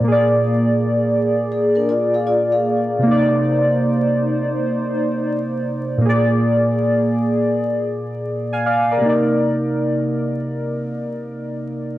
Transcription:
Already playing: A#3 D5
0.00 A#2 A#3
0.05 G#4
0.12 D5
1.52 G#4
1.75 D4 A#4
1.89 F4 D5
2.14 G#4 F5
2.27 F4 D5
2.52 G#4 F5
2.99 C3 A#3
3.04 D#4 C5
3.11 D5
5.98 A#2 A#3
6.04 G#4
6.09 D5
8.53 F5 G#5
8.66 D5 F5
8.91 A#4 D5
8.97 C3
9.01 A#3 D#4
9.09 D5

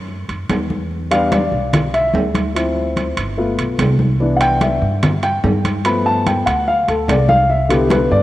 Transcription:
Already playing: F#2
0.08 high conga
0.29 F#2, high conga, high timbale
0.49 E2, high conga, high timbale, low timbale
0.70 high conga
0.91 high conga
1.11 G3 B3 D4 F5, high conga, high timbale
1.32 D5, high conga, high timbale, low timbale
1.52 B1, high conga
1.73 high conga, low conga, high timbale
1.93 E5, high conga, high timbale
2.14 D2, high conga, low timbale
2.35 high conga, high timbale
2.55 F3 C4 E4, high conga, high timbale
2.75 high conga
2.96 high conga, high timbale, low timbale
3.17 G1, high conga, high timbale
3.38 A3 B3 F4, high conga
3.58 B1, high conga, high timbale
3.79 C2, high conga, high timbale, low timbale
3.99 high conga
4.20 E3 B3 D4, high conga
4.37 F#5
4.41 G5, high conga, high timbale
4.61 E5, high conga, high timbale, low timbale
4.81 G2, high conga
5.03 high conga, low conga, high timbale
5.23 G5, high conga, high timbale
5.44 G2, high conga, low timbale
5.65 high conga, high timbale
5.84 F3 A3 B3 B5, high conga, high timbale
6.06 A5, high conga
6.26 G5, high conga, high timbale, low timbale
6.46 D2 F#5, high conga, high timbale
6.67 F5, high conga
6.88 D2 A4, high conga, high timbale
7.08 C2 D5, high conga, high timbale, low timbale
7.29 F5, high conga
7.49 E5, high conga
7.69 D3 B3 E4 G4, high conga, high timbale
7.90 B4, high conga, high timbale, low timbale
8.11 G2 D5, high conga

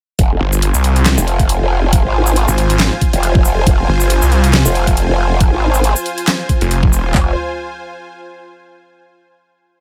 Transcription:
0.19 F1 F4 C5 G#5, kick, closed hi-hat
0.41 G1
0.53 shaker
0.62 closed hi-hat
0.74 C2, shaker
0.84 closed hi-hat
0.96 closed hi-hat
1.06 snare, clap, closed hi-hat
1.18 F1, shaker
1.28 closed hi-hat
1.39 kick, closed hi-hat
1.49 closed hi-hat
1.61 F1
1.93 kick, closed hi-hat
2.05 G#1
2.26 shaker
2.36 closed hi-hat
2.48 G#1, shaker
2.58 closed hi-hat
2.70 closed hi-hat
2.80 snare, clap, closed hi-hat
3.01 kick, closed hi-hat
3.13 F1, closed hi-hat
3.23 closed hi-hat
3.35 kick
3.45 shaker
3.67 F1, kick, closed hi-hat
3.88 G1
4.00 shaker
4.10 closed hi-hat
4.22 C2, shaker
4.32 closed hi-hat
4.44 closed hi-hat
4.54 snare, clap, closed hi-hat
4.65 F1, shaker
4.75 closed hi-hat
4.87 kick, closed hi-hat
4.97 closed hi-hat
5.09 F1
5.41 kick, closed hi-hat
5.52 G#1
5.74 shaker
5.84 closed hi-hat
5.96 shaker
6.06 closed hi-hat
6.18 closed hi-hat
6.28 snare, clap, closed hi-hat
6.49 kick, closed hi-hat
6.61 F1, closed hi-hat
6.71 closed hi-hat
6.83 kick
6.93 shaker
7.14 F1 F4 C5 G#5, kick, clap, floor tom

